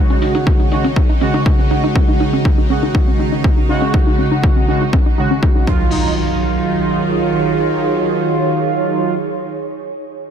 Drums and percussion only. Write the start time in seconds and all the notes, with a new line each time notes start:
0.10 closed hi-hat
0.22 open hi-hat
0.35 closed hi-hat
0.47 kick, closed hi-hat
0.60 closed hi-hat
0.72 open hi-hat
0.84 closed hi-hat
0.96 kick, closed hi-hat
1.09 closed hi-hat
1.21 open hi-hat
1.34 closed hi-hat
1.46 kick, closed hi-hat
1.59 closed hi-hat
1.71 open hi-hat
1.84 closed hi-hat
1.96 kick
2.08 closed hi-hat
2.20 open hi-hat
2.33 closed hi-hat
2.45 kick
2.58 closed hi-hat
2.70 open hi-hat
2.83 closed hi-hat
2.95 kick
3.08 closed hi-hat
3.20 open hi-hat
3.32 closed hi-hat
3.44 kick
3.57 closed hi-hat
3.69 open hi-hat
3.82 closed hi-hat
3.94 kick
4.07 closed hi-hat
4.19 open hi-hat
4.32 closed hi-hat
4.44 kick
4.56 closed hi-hat
4.68 open hi-hat
4.81 closed hi-hat
4.93 kick
5.18 open hi-hat
5.31 closed hi-hat
5.43 kick
5.56 closed hi-hat
5.67 kick